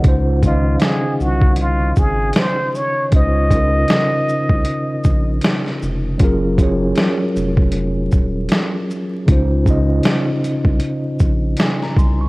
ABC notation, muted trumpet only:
X:1
M:4/4
L:1/8
Q:"Swing 16ths" 1/4=78
K:Db
V:1 name="Muted trumpet"
z F A G F A c d | e6 z2 | z8 | z8 |]